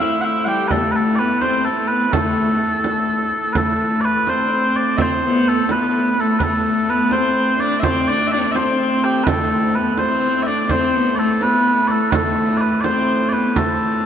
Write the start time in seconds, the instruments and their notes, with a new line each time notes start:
Already playing: hurdy-gurdy A2
0.00 viola da gamba E4, bagpipes E5
0.21 viola da gamba E4, bagpipes E5 F#5
0.45 viola da gamba G3, bagpipes G4 F#5
0.68 bagpipes A4 B4, frame drum
0.72 viola da gamba A3
0.77 viola da gamba B3
0.83 viola da gamba A3
0.92 bagpipes B4, frame drum
0.96 viola da gamba A3, bagpipes A4
1.15 bagpipes B4 D5
1.20 viola da gamba B3
1.42 viola da gamba C4, bagpipes C5, frame drum
1.65 viola da gamba A3, bagpipes A4, frame drum
1.88 viola da gamba B3, bagpipes B4
2.12 viola da gamba A3, bagpipes A4, frame drum
2.84 frame drum
3.08 frame drum
3.31 frame drum
3.53 hurdy-gurdy A2, viola da gamba A3, bagpipes B4, frame drum
3.57 bagpipes A4
3.79 frame drum
4.01 bagpipes B4 D5, frame drum
4.27 viola da gamba C4, bagpipes C5, frame drum
4.46 viola da gamba D4
4.51 viola da gamba C4
4.75 bagpipes D5, frame drum
4.97 viola da gamba C4, bagpipes E5, frame drum
5.01 bagpipes C5
5.23 viola da gamba B3, frame drum
5.46 bagpipes A4, frame drum
5.69 viola da gamba B3, bagpipes B4, frame drum
6.17 viola da gamba A3, bagpipes A4, frame drum
6.39 viola da gamba A3, bagpipes A4 B4, frame drum
6.64 viola da gamba A3, frame drum
6.88 viola da gamba B3, bagpipes B4, frame drum
7.11 viola da gamba C4, bagpipes C5, frame drum
7.59 viola da gamba D4, bagpipes D5, frame drum
7.80 bagpipes E5, frame drum
7.84 viola da gamba C4, bagpipes C5
8.08 viola da gamba D4, bagpipes D5
8.27 bagpipes E5
8.32 viola da gamba D4, bagpipes D5
8.39 viola da gamba C4
8.44 viola da gamba D4
8.51 bagpipes E5, frame drum
8.56 viola da gamba C4, bagpipes C5
9.04 bagpipes G4
9.24 viola da gamba A3, bagpipes B4, frame drum
9.28 hurdy-gurdy A2, bagpipes A4
9.51 frame drum
9.74 viola da gamba B3, bagpipes B4, frame drum
9.98 viola da gamba C4, bagpipes C5, frame drum
10.43 bagpipes D5 E5, frame drum
10.47 viola da gamba D4
10.69 viola da gamba C4, bagpipes C5, frame drum
10.93 viola da gamba B3, frame drum
11.15 bagpipes A4 D5, frame drum
11.21 viola da gamba A3
11.41 viola da gamba B3, bagpipes B4, frame drum
11.88 bagpipes A4 D5, frame drum
11.92 viola da gamba A3
12.11 viola da gamba A3, bagpipes A4 B4, frame drum
12.37 frame drum
12.57 bagpipes B4 D5, frame drum
12.81 bagpipes C5 D5, frame drum
12.86 viola da gamba C4
13.29 viola da gamba C4, bagpipes D5, frame drum
13.33 viola da gamba B3, bagpipes B4
13.56 viola da gamba A3, bagpipes A4, frame drum
13.80 frame drum